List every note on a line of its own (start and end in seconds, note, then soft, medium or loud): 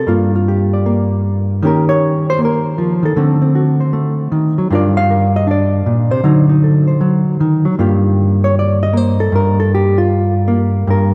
0.00 0.34 A4 medium
0.07 1.61 G2 medium
0.07 0.86 A#3 medium
0.07 0.32 F4 medium
0.35 1.61 F4 soft
0.48 1.61 G4 soft
0.73 1.61 D5 soft
0.86 1.60 A#3 medium
1.62 3.02 D#3 medium
1.62 2.37 A#3 soft
1.62 3.15 C#4 soft
1.62 3.04 G4 medium
1.67 1.89 A#4 medium
1.89 2.26 C#5 medium
2.30 2.40 C5 medium
2.39 2.77 A#3 medium
2.45 3.05 A#4 medium
2.78 3.02 F3 medium
3.03 3.15 D#3 medium
3.03 3.42 A4 medium
3.16 4.31 D3 medium
3.16 3.92 A3 medium
3.16 3.40 C4 medium
3.42 4.68 C4 soft
3.55 4.68 F#4 soft
3.80 4.68 C5 soft
3.93 4.56 A3 medium
4.32 4.56 D#3 medium
4.58 4.70 F#3 medium
4.71 5.85 G2 medium
4.71 5.47 D4 medium
4.71 6.23 F4 medium
4.71 5.09 A#4 soft
4.75 4.97 D5 medium
4.97 5.34 F5 loud
5.10 6.11 A#4 soft
5.36 5.48 D#5 medium
5.47 6.28 D4 medium
5.51 6.12 D5 medium
5.86 6.11 A#2 medium
6.11 6.24 C3 medium
6.11 6.49 C5 medium
6.24 7.76 D3 medium
6.24 6.99 F#3 medium
6.24 6.48 D#4 medium
6.49 7.76 D#4 soft
6.64 7.77 A4 soft
6.87 7.76 C5 soft
7.01 7.39 F#3 medium
7.40 7.65 D#3 medium
7.65 7.78 F#3 medium
7.79 9.32 G2 medium
7.79 8.93 A#3 medium
7.79 9.35 F4 soft
7.79 9.20 G4 medium
8.44 8.56 C#5 medium
8.59 8.82 D5 medium
8.83 8.97 D#5 medium
8.93 9.63 A#3 medium
8.93 9.20 C5 medium
9.20 9.33 A4 medium
9.32 10.87 G2 medium
9.32 9.59 A#4 medium
9.60 9.72 A4 medium
9.74 9.98 G4 medium
9.98 10.49 F4 medium
10.48 11.14 A#3 medium
10.87 11.14 G2 medium
10.87 11.14 A#4 medium